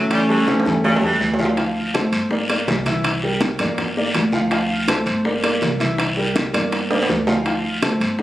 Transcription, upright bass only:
Already playing: A1
0.65 E2
1.02 E2
1.20 D2
2.12 G1
2.67 C2
3.60 G1
4.14 D2
5.06 G1
5.62 C2
6.54 G1
7.09 D2
8.00 G1

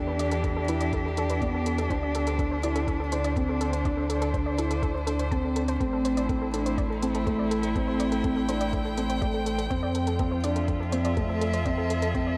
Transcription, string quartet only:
Already playing: E3 D4 G4 E5
1.90 D3
2.26 C5
5.80 A3
6.11 E4
7.08 G5
9.71 F3
10.09 F4
10.50 E5
10.65 A4

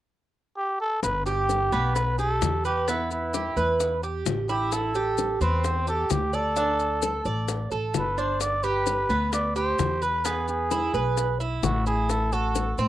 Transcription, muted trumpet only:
0.57 G4
0.80 A4
1.03 B4
1.26 G4
1.95 B4
2.18 A4
2.66 G4
2.89 E4
3.12 E4
4.49 G4
4.73 A4
5.42 B4
5.65 C5
5.88 A4
6.11 G4
6.35 A4
7.95 B4
8.18 C5
8.41 D5
8.64 B4
9.33 D5
9.56 C5
10.02 B4
10.25 G#4
10.48 G#4
11.63 F#4
11.86 G#4
12.10 A4
12.33 F#4

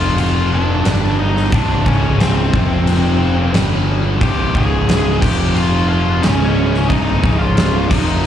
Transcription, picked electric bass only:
Already playing: F1
0.85 G1
1.52 C1
1.86 C#1
2.53 F1
3.54 G1
4.21 C1
4.54 C#1
5.23 F1
6.24 C#1
6.90 C1
7.23 C#1
7.91 F1

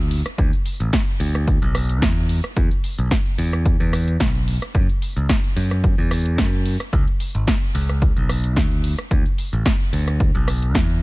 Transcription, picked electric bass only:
Already playing: D2
0.38 D2
0.80 A1
1.20 D2
1.62 B1
2.02 E2
2.57 E2
2.99 B1
3.38 E2
3.80 E2
4.20 B1
4.75 F#2
5.16 C#2
5.56 F#2
5.98 E2
6.38 F#2
6.93 C#2
7.35 G#1
7.75 C#2
8.17 B1
8.56 D2
9.11 D2
9.53 A1
9.93 D2
10.35 B1
10.75 E2

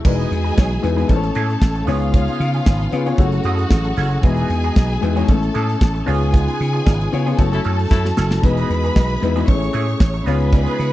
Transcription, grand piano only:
0.05 G#3 B3 D#4 E4 B4
0.82 G#3 B3 D#4 E4 B4
0.96 G#3 B3 D#4 E4 B4
1.09 A3 C#4 E4 A4 C5
1.16 C#5
1.86 B3 C#4 F4 G#4 C#5
2.91 B3 C#4 F4 G#4 B4
3.06 B3 C#4 F4 G#4 C#5
3.18 A3 C#4 E4 F#4 C#5
4.23 G#3 B3 D#4 E4 B4
5.01 G#3 B3 D#4 E4 B4
5.15 G#3 B3 D#4 E4 C#5
5.28 A3 C#4 E4 A4 C#5
6.06 B3 C#4 F4 G#4 C#5
7.12 B3 C#4 F4 G#4 C#5
7.25 B3 C#4 F4 G#4 C#5
7.37 A3 C#4 E4 F#4 C#5
8.42 G#3 B3 D#4 E4 B4
9.22 G#3 B3 D#4 E4 B4
9.36 G#3 B3 D#4 E4 B4
9.48 A3 C#4 E4 G#4 B4
9.55 C#5
10.27 B3 C#4 F4 G#4 C#5

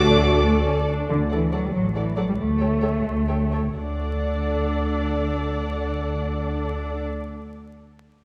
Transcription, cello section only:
Already playing: D4
1.10 D3
1.31 E3
1.52 F#3
1.63 G3
1.73 F#3
1.95 E3
2.16 F#3
2.28 G3
2.38 A3
3.77 D4

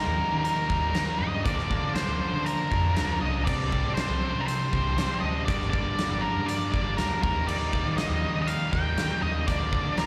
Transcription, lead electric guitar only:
Already playing: A#4
0.44 A#4
1.19 D#5
1.44 D5
1.95 C5
2.46 A#4
3.21 D#5
3.45 D5
3.94 C5
4.41 A#4
4.46 C5
5.20 D#5
5.45 D5
5.70 D5
6.22 A#4
6.46 D5
6.72 D5
6.97 A#4
7.23 A#4
7.47 D5
7.97 D#5
8.42 D#5
8.47 F5
8.73 G5
9.22 D#5
9.47 D5
9.98 A#4

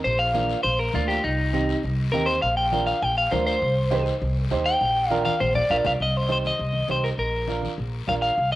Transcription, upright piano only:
0.34 A#3 D4 F4
0.93 A#3 D4 F4
1.53 C4 D#4 G4
2.13 C4 D#4 G4
2.72 D4 F4 A#4
3.31 D4 F4 A#4
3.91 D#4 G4 C5
4.51 D#4 G4 C5
5.10 D4 F4 A#4
5.70 D4 F4 A#4
6.28 D#4 G4 C5
6.89 D#4 G4 C5
7.48 D4 F4 A#4
8.07 D4 F4 A#4

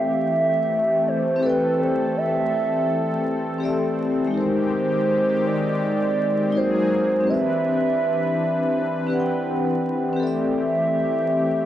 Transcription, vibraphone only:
Already playing: C4 G4 A4 D5 G5
1.36 C4 G4
1.43 A4 D5
1.50 G5
3.58 C4 G4 A4
3.63 D5 E5
4.27 G#3 D#4
4.34 G4 A#4
4.41 C5
6.50 G#3 D#4 F#4
6.55 A#4 C5
7.20 C4 G4
7.27 B4 D5
7.34 E5
9.07 C4 G4 B4
9.12 D5 F#5
9.20 G5
10.13 C4 G4
10.20 A4 D5
10.27 E5

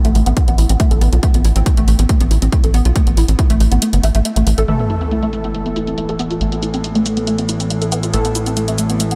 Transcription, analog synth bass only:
0.05 A1
0.15 A1
0.26 A1
0.48 A1
0.58 A1
0.69 A1
0.91 A1
1.01 A1
1.13 B1
1.34 A1
1.45 A1
1.56 A1
1.77 A1
1.88 A1
1.99 A1
2.21 A1
2.31 A1
2.42 A1
2.64 A1
2.74 A1
2.85 B1
3.07 A1
3.17 A1
3.28 A1
3.50 A1
3.60 A1
3.72 A1
3.93 G1
4.04 A1
4.15 A1
4.36 A1
4.47 A1
4.58 A1
4.68 A1
6.41 A1
8.14 A1

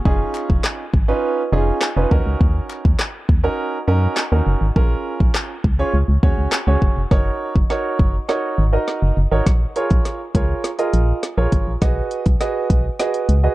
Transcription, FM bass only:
0.05 F1
0.50 F1
0.94 G#1
1.52 F1
1.97 F1
2.11 D#2
2.26 C#2
2.41 D#2
2.85 D#2
3.29 D#2
3.88 F#2
4.32 D#2
4.47 F#1
4.61 G#1
4.76 A#1
5.20 A#1
5.64 C#2
5.94 C#2
6.08 C#2
6.23 D#2
6.38 C#2
6.67 C#2
6.82 F#1
6.97 F1
7.11 F#1
7.56 F#1
7.99 F#1
8.58 G#1
9.02 F#1
9.17 F#1
9.32 G#1
9.47 A#1
9.91 A#1
10.35 C#2
10.94 A#1
11.38 A#1
11.52 G#1
11.67 A#1
11.82 B1
12.26 B1
12.70 B1
13.29 C#2

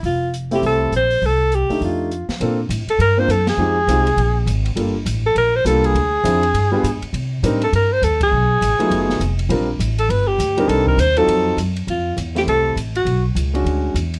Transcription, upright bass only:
0.03 F1
0.62 C2
0.92 A#1
1.22 C2
1.70 muted upright bass stroke
1.81 F2
2.28 muted upright bass stroke
2.40 A#2
2.69 A2
2.87 muted upright bass stroke
2.99 G2
3.28 F#2
3.57 F2
3.87 C2
4.17 A#1
4.46 G#1
4.76 G1
5.06 A1
5.35 A#1
5.65 C2
5.94 D2
6.24 F2
6.54 G2
6.83 G#2
7.02 muted upright bass stroke
7.13 C3
7.43 A2
7.72 G2
8.02 D#2
8.32 B1
8.61 A1
8.79 muted upright bass stroke
8.90 F#1
9.20 F1
9.49 A#1
9.79 A1
10.09 G1
10.39 D2
10.68 C2
10.98 D#2
11.27 F2
11.57 F#2
11.87 F2
12.17 E2
12.46 C2
12.76 A1
13.05 B1
13.35 C#2
13.65 D2
13.94 E2

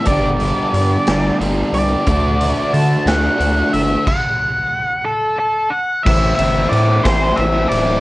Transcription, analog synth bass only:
0.07 G1
0.74 G2
1.07 G1
1.40 G1
1.73 C2
2.08 D2
2.74 D3
3.06 D2
3.40 D2
3.74 G1
6.06 A1
6.39 G1
6.72 A2
7.05 A1
7.38 A1
7.71 D1

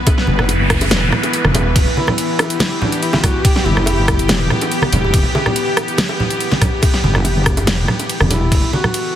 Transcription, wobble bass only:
0.28 F#1
0.91 E1
1.45 E1
1.76 E1
3.66 F#1
4.29 E1
4.92 E1
5.14 E1
7.04 F#1
7.67 E1
8.21 E1
8.52 E1

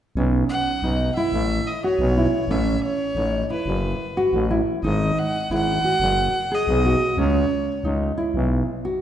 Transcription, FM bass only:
0.15 B1
0.82 B1
1.32 A1
1.99 B1
2.48 A1
3.15 A1
3.66 F#1
4.33 A1
4.83 G#1
5.50 G#1
6.00 F#1
6.67 B1
7.17 C#2
7.84 C#2
8.34 B1

